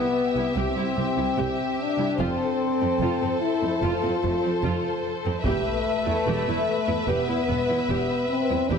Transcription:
Already playing: B3 G4 E5
0.36 C2 E4
0.56 C2 C4 G4
0.76 C2 E4
0.97 C2 C4
1.17 C2 E4
1.38 C2 G4
1.80 D4
1.99 C2 E4
2.18 F1 F2 C4 F4 A4 C5
2.81 F2 C4
3.00 F1 F2 F4
3.22 F2 C4
3.41 E4
3.62 F2 C4
3.82 F1 F2 F4
4.02 F2 C4
4.23 F1 F2 A3
4.43 F2 C4
4.63 F1 F2 F4
5.25 F2 C4
5.43 E1 E2 A3 G4 B4 E5, taiko
6.05 E2 E4
6.27 E1 E2 G4
6.47 E2 E4
6.87 E2 E4
7.07 E1 E2 B3 G4
7.28 E2 E4
7.48 E1 E2 B3
7.68 E2 E4
7.88 E1 E2 G4
8.29 C4
8.49 E2 E4
8.69 E1 E2 D4 G4 B4 E5

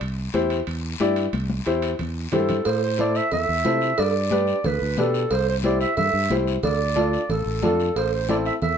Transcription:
0.01 C2, high conga, high timbale, long guiro
0.34 E2 E4 G4 C5, high conga, high timbale, short guiro
0.50 high timbale, short guiro
0.67 E2, high conga, high timbale, long guiro
1.00 G2 E4 G4 D5, high conga, high timbale, short guiro
1.16 high timbale, short guiro
1.33 C2, high conga, high timbale, long guiro
1.50 high conga
1.66 E2 E4 G4 C5, high timbale, short guiro
1.82 high timbale, short guiro
1.99 E2, low conga, high timbale, long guiro
2.32 G2 E4 G4 A4 C5, low conga, high timbale, low timbale, short guiro
2.49 low conga, high timbale, short guiro
2.65 A2 C5, cowbell, high conga, long guiro
2.84 C5
2.98 E4 A4 C5 D5, cowbell, high conga, short guiro
3.15 E5, short guiro
3.32 E2 E5, cowbell, high conga, low conga, long guiro
3.49 E2
3.65 C3 E4 A4 C5, cowbell, high conga, low timbale, short guiro
3.81 short guiro
3.98 G2 D5, cowbell, high conga, long guiro
4.31 D4 G4 B4, cowbell, high conga, short guiro
4.47 short guiro
4.64 D2 B4, cowbell, high conga, low conga, long guiro
4.82 D2
4.97 B2 D4 G4 A4 B4, cowbell, high conga, low conga, short guiro
5.14 short guiro
5.31 C2 C5, cowbell, high conga, long guiro
5.49 C5
5.63 E4 G4 C5 D5, cowbell, high conga, short guiro
5.81 E5, short guiro
5.97 G2 E5, cowbell, high conga, low conga, long guiro
6.14 G2
6.30 C2 E4 G4 C5, cowbell, high conga, low timbale, short guiro
6.47 short guiro
6.63 D2 D5, cowbell, high conga, low conga, long guiro
6.96 D4 F4 A4, cowbell, high conga, short guiro
7.13 short guiro
7.29 A1 A4, cowbell, high conga, low conga, long guiro
7.46 A1
7.62 F2 D4 F4 A4, cowbell, high conga, low conga, low timbale, short guiro
7.80 short guiro
7.96 A1 C5, cowbell, high conga, long guiro
8.14 C5
8.29 C4 E4 A4 D5, cowbell, high conga, short guiro
8.46 E5, short guiro
8.62 E2 E5, cowbell, high conga, low conga, long guiro

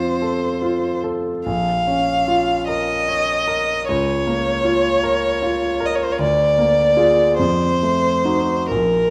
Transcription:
Already playing: F2 C4 F4 C5
0.22 A4
0.62 F4
1.04 A4
1.46 A#1 F5
1.87 C#4
2.28 F4
2.68 A#4 D#5
3.08 C#5
3.48 A#4
3.88 C#2 C#5
4.27 A#3
4.65 F4
5.03 A#4
5.42 F4
5.80 A#4
5.86 D#5
5.95 C#5
6.04 C5
6.12 C#5
6.19 D2 D5
6.58 A#3
6.97 F4 G#4
7.39 F2 C5
7.83 A3
8.25 D#4 F#4
8.70 A#1 A#4

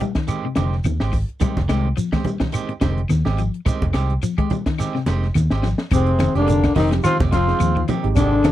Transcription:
0.01 G3, low conga, shekere
0.15 D#3, kick, snare, closed hi-hat
0.27 D#3 G#3 C4 G4, closed hi-hat, high conga, claves, shekere
0.45 C3
0.55 F1 D3 D#3 G#3 C4 G4, snare, closed hi-hat, high conga, shekere
0.72 snare
0.84 D#2 D#3, closed hi-hat, high conga, claves, shekere
1.00 G#1 G#3 C4 G4, snare
1.13 muted clean electric guitar stroke, kick, open hi-hat, shekere
1.29 closed hi-hat
1.40 D#3 G3 G#3 C4 G4, muted fingered electric bass stroke, kick, closed hi-hat, high conga, low conga, claves, shekere
1.57 F1, kick, snare, closed hi-hat, high conga
1.68 C2 D#3 G#3 C4 G4, snare, closed hi-hat, claves, shekere
1.85 high conga
1.97 F3, closed hi-hat, shekere
2.12 G#3 C4 G4, kick, snare, closed hi-hat, high conga, claves
2.24 G3, closed hi-hat, high conga, low conga, shekere
2.40 D#3, kick, snare, closed hi-hat, low conga
2.52 D#3 G#3 C4 G4, closed hi-hat, high conga, claves, shekere
2.69 muted clean electric guitar stroke, closed hi-hat
2.81 F1 D3 D#3 G#3 C4 G4, kick, snare, closed hi-hat, high conga, shekere
2.98 closed hi-hat
3.09 D#2 D#3, snare, closed hi-hat, high conga, claves, shekere
3.25 G#1 G#3 C4 G4, snare, high conga
3.38 F3, closed hi-hat, shekere
3.54 closed hi-hat
3.65 D#3 G#3 C4 G4, muted fingered electric bass stroke, muted clean electric guitar stroke, kick, closed hi-hat, high conga, low conga, claves, shekere
3.82 F1, kick, closed hi-hat, high conga
3.93 C2 D#3 G#3 C4 G4, muted clean electric guitar stroke, snare, closed hi-hat, claves, shekere
4.10 closed hi-hat, high conga
4.23 F3, closed hi-hat, shekere
4.38 G#3 G4, kick, closed hi-hat, high conga, claves
4.50 G3, closed hi-hat, high conga, low conga, shekere
4.66 D#3, kick, snare, closed hi-hat
4.78 D#3 G#3 C4 G4, snare, closed hi-hat, high conga, claves, shekere
4.95 C3, snare
5.06 F1 D#3 G#3 C4 G4, snare, closed hi-hat, high conga, shekere
5.22 snare
5.34 D#2 D#3, snare, closed hi-hat, high conga, claves, shekere
5.50 G#1 G#3 C4 G4, snare
5.63 F3, snare, shekere
5.78 snare
5.91 F1 C3 D#3 G#3 C4 G4, muted clean electric guitar stroke, kick, closed hi-hat, claves, shekere
6.06 closed hi-hat
6.19 D#3, snare, closed hi-hat, high conga, claves, shekere
6.35 F1 D3 G#3 C4 D4 D#4 G4, muted clean electric guitar stroke, snare, closed hi-hat
6.39 A#3
6.48 D3, closed hi-hat, shekere
6.63 kick, snare, closed hi-hat, claves
6.75 F1 D#3 G#3 C4 D#4 G4, open hi-hat, high conga, low conga, shekere
6.91 F3 G#3 C4 D#4 G4, snare, closed hi-hat
7.03 D#3 F3 C4 F4, snare, closed hi-hat, high conga, claves, shekere
7.20 F1 G#3 C4 G4, kick, snare, closed hi-hat, high conga
7.31 F3 C4 F4, kick, snare, closed hi-hat, shekere
7.47 G#3 C4 D#4 G#4, snare, closed hi-hat
7.60 D#2 F3, closed hi-hat, claves, shekere
7.76 D#3, high conga
7.88 D#3 F3 C4 G4, muted clean electric guitar stroke, closed hi-hat, low conga, shekere
8.03 G#1 G#3 C4 D#4 G4, closed hi-hat
8.16 C3 D3 D#3 G#3 C4 D4 G4, kick, snare, closed hi-hat, claves, shekere
8.44 F1 D#3, snare, closed hi-hat, high conga, claves, shekere

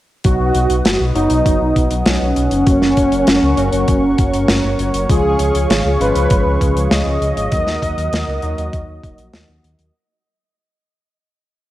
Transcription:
0.24 B1 F#3 B3 D#4 F#4 B4 D#5 F#5 D#6, kick, closed hi-hat
0.40 B1
0.55 B1, closed hi-hat
0.70 B1, closed hi-hat
0.85 F#1, snare, closed hi-hat
1.00 B1
1.15 F#1 F#3 B3 D#4 F#4, closed hi-hat
1.30 B1, closed hi-hat
1.46 F#1, kick, closed hi-hat
1.61 B1
1.76 B1, kick, closed hi-hat
1.91 B1, closed hi-hat
2.06 B1 C#4, snare, closed hi-hat
2.22 B1
2.36 B1, closed hi-hat
2.51 F#1, closed hi-hat
2.67 F#1 F#3 A#3 C#4 F#4 A#4 C#5 C#6, kick, closed hi-hat
2.82 F#1, snare
2.97 F#1, kick, closed hi-hat
3.12 F#1, closed hi-hat
3.27 F#1, snare, closed hi-hat
3.43 C#2
3.57 F#1 F#3 A#3 C#4 F#4, closed hi-hat
3.73 F#1, closed hi-hat
3.88 F#1, kick, closed hi-hat
4.03 F#1
4.18 F#1, kick, closed hi-hat
4.34 F#1, closed hi-hat
4.48 F#1, snare, closed hi-hat
4.64 F#1
4.79 F#1, closed hi-hat
4.94 F#1, closed hi-hat
5.09 C#2 F3 G#3 C#4 F4 G#4 F5 C#6, kick, closed hi-hat
5.25 C#2
5.39 C#2, closed hi-hat
5.55 C#2, closed hi-hat
5.70 G#1, snare, closed hi-hat
5.85 C#2
6.00 G#1 F3 G#3 C#4 F4 B4, closed hi-hat
6.15 C#2, closed hi-hat
6.30 G#1, kick, closed hi-hat
6.46 C#2
6.61 C#2, kick, closed hi-hat
6.76 C#2, closed hi-hat
6.91 C#2 D#5, snare, closed hi-hat
7.06 C#2
7.21 C#2, closed hi-hat
7.37 G#1, closed hi-hat
7.52 D#2 F#3 A#3 D#4 F#4 A#4 D#5 F#5 D#6, kick, closed hi-hat
7.67 D#2, snare
7.82 D#2, kick, closed hi-hat
7.98 D#2, closed hi-hat
8.13 D#2, snare, closed hi-hat
8.28 C#2
8.42 D#2 F#3 A#3 D#4 F#4, closed hi-hat
8.58 D#2, closed hi-hat
8.73 D#2, kick, closed hi-hat
8.88 D#2
9.04 D#1, kick, closed hi-hat
9.18 A#1, closed hi-hat
9.33 D#2, snare, closed hi-hat
9.49 D#2
9.64 D#2, closed hi-hat
9.79 D#2, closed hi-hat

